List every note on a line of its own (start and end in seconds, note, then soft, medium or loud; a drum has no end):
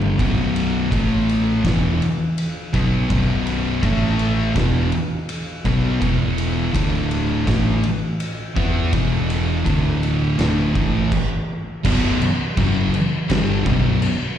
0.00 0.17 G1 medium
0.00 0.18 G2 loud
0.00 0.18 D3 loud
0.00 0.18 G3 medium
0.00 floor tom medium
0.18 0.88 B0 medium
0.18 0.90 B1 medium
0.18 0.91 F#2 medium
0.18 0.91 B2 medium
0.18 kick loud
0.18 ride medium
0.56 ride medium
0.91 1.60 A1 medium
0.91 1.63 A2 medium
0.91 1.63 E3 medium
0.91 1.63 A3 medium
0.91 kick loud
0.91 ride medium
1.29 ride medium
1.64 1.98 E1 medium
1.64 1.99 E2 loud
1.64 2.00 B2 medium
1.64 2.00 E3 loud
1.64 kick loud
1.64 snare loud
1.64 ride medium
2.02 ride medium
2.38 ride medium
2.74 3.08 B1 medium
2.74 3.09 B2 medium
2.74 3.09 F#3 loud
2.74 3.10 B3 loud
2.74 kick loud
2.74 snare soft
2.74 ride medium
3.10 3.79 B0 medium
3.10 3.82 B1 medium
3.10 3.82 F#2 loud
3.10 3.83 B2 medium
3.10 kick loud
3.10 ride medium
3.47 ride medium
3.82 4.52 A1 medium
3.82 4.54 A2 medium
3.82 4.54 E3 medium
3.82 4.55 A3 medium
3.82 kick loud
3.82 ride medium
4.19 ride medium
4.55 4.90 E1 medium
4.55 4.91 E2 medium
4.55 4.91 B2 loud
4.55 4.91 E3 loud
4.55 kick loud
4.55 snare loud
4.55 ride medium
4.92 ride medium
5.29 ride medium
5.65 5.99 B1 medium
5.65 6.00 B2 loud
5.65 6.00 F#3 loud
5.65 6.01 B3 loud
5.65 kick medium
5.65 snare soft
5.65 ride medium
6.00 6.71 E1 medium
6.00 6.71 E2 medium
6.00 6.72 B2 medium
6.00 6.73 E3 loud
6.00 kick loud
6.00 ride medium
6.38 ride medium
6.72 7.43 D1 medium
6.72 7.45 D2 medium
6.72 7.45 A2 loud
6.72 7.46 D3 medium
6.72 kick loud
6.72 ride loud
7.11 ride medium
7.46 7.81 A1 loud
7.46 7.82 A2 medium
7.46 7.82 E3 medium
7.46 7.82 A3 loud
7.46 kick loud
7.46 snare loud
7.46 ride loud
7.84 ride medium
8.20 ride medium
8.56 8.90 E2 loud
8.56 8.92 E3 loud
8.56 8.92 B3 loud
8.56 8.92 E4 loud
8.56 kick loud
8.56 ride medium
8.92 9.62 E1 medium
8.92 9.64 E2 medium
8.92 9.65 B2 loud
8.92 9.65 E3 medium
8.92 kick loud
8.92 ride loud
9.30 ride medium
9.65 10.35 D1 medium
9.65 10.37 D2 medium
9.65 10.38 A2 medium
9.65 10.38 D3 medium
9.65 kick loud
9.65 ride medium
10.03 ride medium
10.39 10.72 D1 medium
10.39 10.74 D2 medium
10.39 10.74 A2 loud
10.39 10.74 D3 medium
10.39 snare loud
10.39 ride medium
10.75 11.09 A1 medium
10.75 11.11 A2 medium
10.75 11.11 E3 medium
10.75 11.11 A3 medium
10.75 kick loud
10.75 ride medium
11.12 kick loud
11.12 crash loud
11.85 12.18 B0 loud
11.85 12.20 B1 medium
11.85 12.20 F#2 medium
11.85 12.20 B2 loud
11.85 kick loud
11.85 crash loud
12.21 muted fingered electric bass stroke soft
12.21 muted distorted electric guitar stroke medium
12.21 crash medium
12.57 12.91 F#1 medium
12.57 12.93 F#2 medium
12.57 12.93 C#3 loud
12.57 12.93 F#3 loud
12.57 kick loud
12.57 crash loud
12.93 muted fingered electric bass stroke soft
12.93 muted distorted electric guitar stroke medium
12.93 crash medium
13.29 13.63 G1 loud
13.29 13.65 G2 loud
13.29 13.65 D3 medium
13.29 13.66 G3 loud
13.29 snare loud
13.29 crash medium
13.66 14.00 B0 medium
13.66 14.01 B1 medium
13.66 14.01 F#2 medium
13.66 14.01 B2 medium
13.66 kick loud
13.66 crash medium
14.02 crash medium